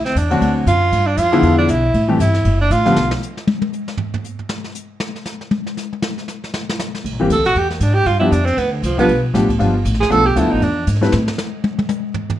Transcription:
Already playing: upright bass D2
0.05 tenor saxophone C4, snare
0.15 upright bass E2, tenor saxophone D4, kick, hi-hat pedal, ride
0.30 grand piano D3 F#3 A3 C4 F#4, ride
0.41 upright bass D2, kick, ride
0.66 upright bass F#2, tenor saxophone F4, kick, hi-hat pedal, ride
0.92 upright bass G2, kick, ride
1.07 tenor saxophone D4
1.17 upright bass F2, tenor saxophone F4, kick, hi-hat pedal, ride
1.32 grand piano D3 F3 G#3 B3 E4, ride
1.43 upright bass E2, kick, ride
1.58 tenor saxophone D4
1.68 upright bass B1, tenor saxophone E4, kick, hi-hat pedal, ride
1.94 upright bass A1, kick, ride
2.08 grand piano E3 G3 A3 C4 G4
2.19 upright bass G1, tenor saxophone E4, kick, hi-hat pedal, ride
2.34 snare, ride
2.45 upright bass F#1, kick, ride
2.61 tenor saxophone D4
2.71 upright bass A1, tenor saxophone F4, kick, hi-hat pedal, ride
2.85 grand piano D3 F3 G3 B3 F4, snare
2.96 upright bass B1, snare
3.11 snare
3.22 hi-hat pedal
3.37 snare
3.47 high tom
3.62 high tom
3.73 hi-hat pedal
3.88 snare
3.97 floor tom
4.14 floor tom
4.24 hi-hat pedal
4.39 floor tom
4.49 snare
4.64 snare
4.75 hi-hat pedal
5.00 snare
5.15 snare
5.25 snare, hi-hat pedal
5.41 snare
5.51 high tom
5.66 snare
5.77 snare, hi-hat pedal
5.93 high tom
6.02 snare
6.18 snare
6.28 snare, hi-hat pedal
6.44 snare
6.54 snare
6.69 snare
6.79 snare, hi-hat pedal
6.95 snare
7.05 upright bass C2, kick, ride
7.12 upright bass A#1
7.20 upright bass G1, grand piano E3 G3 A#3 C4 G4
7.30 upright bass D2, tenor saxophone A4, kick, hi-hat pedal, ride
7.38 upright bass C2
7.45 upright bass A#1, tenor saxophone F#4, snare
7.55 upright bass E2, tenor saxophone G4, kick, ride
7.70 tenor saxophone A#3, snare
7.80 upright bass G#2, tenor saxophone D4, kick, hi-hat pedal, ride
7.94 tenor saxophone G4
8.06 upright bass G2, tenor saxophone F4, kick, ride
8.19 grand piano F3 G3 B3 D4 G4, tenor saxophone E4
8.32 upright bass F2, tenor saxophone D4, kick, hi-hat pedal, ride
8.46 tenor saxophone C4, ride
8.57 upright bass D2, tenor saxophone B3, kick, ride
8.72 tenor saxophone D3
8.83 upright bass C2, tenor saxophone F3, kick, hi-hat pedal, ride
8.98 grand piano F3 G3 B3 D4 F4, tenor saxophone B3, kick, ride
9.08 upright bass B1, kick, ride
9.34 upright bass A1, grand piano F3 G3 B3 D4 G4, kick, snare, hi-hat pedal, ride
9.49 kick, ride
9.59 upright bass G1, grand piano F3 G3 B3 D4 F4, ride
9.85 upright bass A1, kick, hi-hat pedal, ride
9.94 snare
10.00 tenor saxophone G#4, snare
10.10 upright bass B1, grand piano F3 A3 B3 D4 A4, tenor saxophone A4, kick, ride
10.26 tenor saxophone G4
10.35 upright bass D2, grand piano F3 A3 B3 D4 A4, tenor saxophone E4, kick, hi-hat pedal, ride
10.45 upright bass B1
10.51 upright bass A1, tenor saxophone D#4
10.62 upright bass E2, tenor saxophone D4, kick, ride
10.87 upright bass G#2, kick, hi-hat pedal, ride
10.96 snare
11.01 grand piano G3 A3 C4 E4 B4, snare, ride
11.12 upright bass A2, snare
11.28 snare
11.38 snare, hi-hat pedal
11.64 high tom
11.79 high tom
11.89 hi-hat pedal, high tom
12.14 floor tom
12.30 floor tom

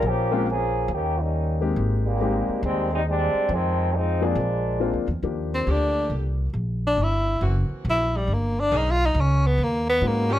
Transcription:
0.02 upright bass A#1, trombone section F3 A#3 C#4 G4
0.32 upright piano G#3 A#3 C4 C#4 F4
0.49 trombone section F3 A#3 C#4 G#4
0.88 upright bass D#2
0.92 trombone section D#3 A#3 C#4 G4
1.19 trombone section G3 A#3 C#4 D#4
1.61 upright piano G#3 A#3 C4 D#4 G4
1.76 upright bass G#1
2.05 trombone section D#3 G3 G#3 A#3
2.20 upright piano G#3 A#3 C4 D#4 G4
2.48 muted upright bass stroke
2.63 upright bass D#2, trombone section D#3 G3 G#3 C4
2.93 trombone section G3 G#3 C4 D#4
3.08 trombone section G3 G#3 C4 D4
3.34 muted upright bass stroke
3.49 upright bass F2, trombone section D#3 F3 G#3 C4
3.95 trombone section F3 G#3 C4 D#4
4.21 upright piano F3 A#3 C4 D4 G#4, trombone section F3 G#3 A#3 D4
4.35 upright bass A#1
4.80 upright piano F3 A#3 C4 D4 F4
4.93 upright bass D2
5.08 upright bass E2
5.23 upright bass D#2, upright piano F3 A#3 D4 G4
5.54 tenor saxophone C4
5.66 upright bass D2, saxophone section D3 A#3 G4
5.71 tenor saxophone D4
6.10 upright bass C2
6.54 upright bass A#1
6.87 tenor saxophone D4
6.97 upright bass G1
7.03 tenor saxophone E4
7.41 upright bass F#1, saxophone section E3 A#3 C4 F#4
7.69 muted upright bass stroke
7.85 upright bass A#1
7.90 tenor saxophone E4
8.17 tenor saxophone G3
8.28 upright bass G1
8.33 tenor saxophone A#3
8.60 tenor saxophone D4
8.71 upright bass B1, saxophone section D#3 B3 C#4 G#4
8.77 tenor saxophone D#4
8.91 tenor saxophone F4
9.06 tenor saxophone D#4
9.14 upright bass C#2
9.20 tenor saxophone C#4
9.46 tenor saxophone B3
9.58 upright bass D#2
9.63 tenor saxophone A#3
9.89 tenor saxophone B3
10.01 upright bass G#2, upright piano G#3 B3 C#4 D#4 F#4
10.07 tenor saxophone A#3
10.29 saxophone section F3 B3 D4 G4, tenor saxophone C#4

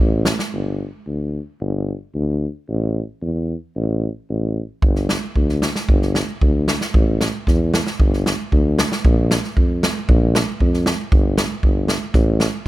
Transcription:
0.00 tuba A1
0.25 snare
0.39 snare
0.53 tuba G1
1.06 tuba D2
1.60 tuba G1
2.15 tuba D2
2.68 tuba A1
3.22 tuba E2
3.76 tuba A1
4.29 tuba A1
4.82 tuba G1, kick
4.96 snare
5.09 snare
5.36 tuba D2, kick
5.49 snare
5.62 snare
5.75 snare
5.89 tuba G1, kick
6.02 snare
6.15 snare
6.41 tuba D2, kick
6.68 snare
6.81 snare
6.94 tuba A1, kick
7.21 snare
7.47 tuba E2, kick, snare
7.74 snare
7.87 snare
8.00 tuba G1, kick
8.13 snare
8.26 snare
8.52 tuba D2, kick
8.79 snare
8.92 snare
9.05 tuba A#1, kick
9.31 snare
9.44 snare
9.57 tuba F2, kick
9.83 snare
10.09 tuba A#1, kick
10.35 snare
10.60 tuba F2, kick
10.74 snare
10.86 snare
11.12 tuba G1, kick
11.38 snare
11.63 tuba G1, kick
11.88 snare
12.14 tuba A1, kick, snare
12.40 snare

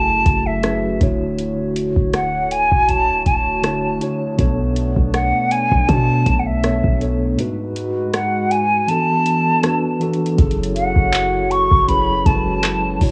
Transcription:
Already playing: 808-style bass F#1, tine electric piano F#3 C#4 E4 G#4 A4, analog synth pad F#3 A3 E4 F#4, flute A5
0.26 808-style bass F#1, kick, closed hi-hat
0.47 flute E5
0.62 tine electric piano F#3 C#4 E4 G#4 B4, cross-stick, closed hi-hat
0.99 808-style bass D1, tine electric piano D3 D4 E4 F#4 C#5, analog synth pad D3 A3 F#4 C#5, kick, closed hi-hat
1.38 closed hi-hat
1.76 closed hi-hat
1.96 808-style bass D1, kick
2.13 flute F#5, cross-stick, closed hi-hat
2.51 flute G#5, closed hi-hat
2.72 808-style bass D1, kick
2.89 flute A5, kick, closed hi-hat
3.26 808-style bass D1, flute A5, kick, closed hi-hat
3.62 tine electric piano D3 D4 E4 F#4 C#5, cross-stick, closed hi-hat
4.00 tine electric piano D3 D4 E4 F#4 C#5, closed hi-hat
4.37 808-style bass B1, tine electric piano B2 B3 D4 A4 C#5, analog synth pad B3 D4, kick, closed hi-hat
4.76 closed hi-hat
4.96 808-style bass B1, kick
5.14 flute F#5, cross-stick, closed hi-hat
5.51 flute G#5, closed hi-hat
5.72 808-style bass B1, kick
5.89 808-style bass B2, flute A5, kick, closed hi-hat
6.26 808-style bass B1, kick, closed hi-hat
6.39 flute F#5
6.46 flute E5
6.62 tine electric piano B2 B3 D4 A4 C#5, cross-stick, closed hi-hat
6.84 808-style bass B1, kick
6.99 tine electric piano B2 B3 D4 A4 C#5, closed hi-hat
7.37 tine electric piano G#2 G#3 D#4 F#4 B4, analog synth pad G#3 D#4 F#4 B4, closed hi-hat
7.76 closed hi-hat
8.14 flute F#5, cross-stick, closed hi-hat
8.51 flute G#5, closed hi-hat
8.87 tine electric piano E3 B3 D4 F#4 A4, analog synth pad E3 B3 D4 A4, flute A5, closed hi-hat
9.26 closed hi-hat
9.62 tine electric piano E3 B3 D4 F#4 B4, cross-stick, closed hi-hat
9.99 tine electric piano E3 B3 D4 F#4 A4, closed hi-hat
10.13 closed hi-hat
10.26 closed hi-hat
10.37 808-style bass F#1, tine electric piano F#3 C#4 E4 G#4 A4, analog synth pad F#3 E4 F#4 C#5, kick, closed hi-hat
10.51 closed hi-hat
10.64 closed hi-hat
10.76 flute F#5, closed hi-hat
10.96 808-style bass F#1, kick
11.13 clap, closed hi-hat
11.51 flute C#6, closed hi-hat
11.71 808-style bass F#1, kick
11.87 tine electric piano F#3 C#4 E4 G#4 B4, flute B5, kick, closed hi-hat
12.25 808-style bass F#1, tine electric piano F#3 G#3 C#4 E4 A4, flute A5, kick, closed hi-hat
12.35 tine electric piano B4
12.64 cross-stick, clap, closed hi-hat
12.99 808-style bass D1, tine electric piano D3 D4 E4 F#4 C#5, analog synth pad D3 A3 F#4 C#5, kick, open hi-hat

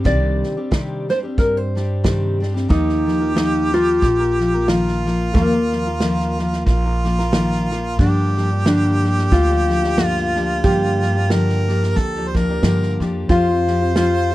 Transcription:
0.04 upright bass C2, steel-string acoustic guitar C3 D#3 G3 C4 D4 G4, nylon-string guitar D5, kick, snare
0.43 snare
0.57 steel-string acoustic guitar G3 C4 D4 G4
0.71 steel-string acoustic guitar C3 D#3 G3 C4 D4 G4, kick, snare
1.09 steel-string acoustic guitar G3 C4 D4 G4, nylon-string guitar C5, snare
1.23 steel-string acoustic guitar G3 C4 D4 G4
1.38 upright bass G2, nylon-string guitar A#4, kick, snare
1.57 nylon-string guitar C5
1.75 steel-string acoustic guitar G3 C4 D4 G4, snare
2.04 steel-string acoustic guitar C3 D#3 G3 C4 D4 G4, kick, snare
2.40 steel-string acoustic guitar G3 C4 D4 G4, snare
2.54 steel-string acoustic guitar G3 C4 D4 G4, snare
2.68 upright bass D#2, steel-string acoustic guitar D#3 F3 A#3 F4 A#4, nylon-string guitar D#4, harmonica G4, kick, snare
2.89 snare
3.06 steel-string acoustic guitar F3 A#3 F4 A#4, snare
3.19 steel-string acoustic guitar A#3 F4 A#4
3.34 steel-string acoustic guitar D#3 F3 A#3 F4 A#4, nylon-string guitar D#4, snare
3.72 steel-string acoustic guitar F3 A#3 F4 A#4, snare
4.02 upright bass A#1, kick, snare
4.20 steel-string acoustic guitar A#3 F4 A#4
4.39 steel-string acoustic guitar F3 A#3 F4 A#4, snare
4.54 steel-string acoustic guitar A#3 F4 A#4
4.68 steel-string acoustic guitar D#3 F3 A#3 F4 A#4, harmonica F4, snare
4.88 snare
5.06 steel-string acoustic guitar F3 A#3 F4 A#4, snare
5.34 upright bass D#2, steel-string acoustic guitar D#3 F3 A#3 F4 A#4, kick, snare
5.54 steel-string acoustic guitar A#3 F4 A#4
5.72 steel-string acoustic guitar F3 A#3 F4 A#4, snare
5.86 steel-string acoustic guitar A#3 F4 A#4
6.00 steel-string acoustic guitar D#3 F3 A#3 F4 A#4, snare
6.20 snare
6.38 steel-string acoustic guitar F3 A#3 F4 A#4, snare
6.53 snare
6.66 upright bass A#1, harmonica F4, kick, snare
6.85 steel-string acoustic guitar A#3 F4 A#4
7.04 steel-string acoustic guitar F3 A#3 F4 A#4, snare
7.19 steel-string acoustic guitar A#3 F4 A#4, snare
7.32 steel-string acoustic guitar D#3 F3 A#3 F4 A#4, snare
7.52 snare
7.70 steel-string acoustic guitar F3 A#3 F4 A#4, snare
7.98 steel-string acoustic guitar G2 D3 F3 A#3 D4 G4, upright bass G2, harmonica G4, kick, snare
8.36 steel-string acoustic guitar F3 A#3 D4 G4, snare
8.51 steel-string acoustic guitar F3 A#3 D4 G4
8.65 steel-string acoustic guitar G2 D3 F3 A#3 D4 G4, snare
9.02 steel-string acoustic guitar F3 A#3 D4 G4, snare
9.18 snare
9.31 upright bass D2, nylon-string guitar F4, kick, snare
9.49 steel-string acoustic guitar F3 A#3 D4 G4
9.68 steel-string acoustic guitar F3 A#3 D4 G4, snare
9.83 steel-string acoustic guitar F3 A#3 D4 G4, snare
9.97 steel-string acoustic guitar G2 D3 F3 A#3 D4 G4, snare
10.06 harmonica F4
10.17 snare
10.35 steel-string acoustic guitar F3 A#3 D4 G4, snare
10.63 steel-string acoustic guitar G2 D3 F3 A#3 D4 G4, upright bass G2, kick, snare
11.02 steel-string acoustic guitar F3 A#3 D4 G4, snare
11.15 steel-string acoustic guitar F3 A#3 D4 G4
11.30 steel-string acoustic guitar G2 D3 F3 A#3 D4 G4, harmonica A#4, snare
11.49 snare
11.68 steel-string acoustic guitar F3 A#3 D4 G4, snare
11.83 snare
11.96 upright bass D2, harmonica A4, kick, snare
12.16 steel-string acoustic guitar F3 A#3 D4 G4
12.27 harmonica C5
12.34 steel-string acoustic guitar F3 A#3 D4 G4, harmonica A#4, kick, snare
12.49 steel-string acoustic guitar F3 A#3 D4 G4
12.63 steel-string acoustic guitar G2 D3 F3 A#3 D4 G4, upright bass G2, snare
12.82 snare
13.00 upright bass F2, steel-string acoustic guitar F3 A#3 D4 G4, snare
13.29 upright bass F2, steel-string acoustic guitar F3 C4 F4 G4, harmonica C5, kick, snare
13.48 steel-string acoustic guitar C4 F4 G4
13.67 steel-string acoustic guitar F3 C4 F4 G4, snare
13.81 steel-string acoustic guitar C4 F4 G4
13.95 steel-string acoustic guitar F3 C4 F4 G4, snare

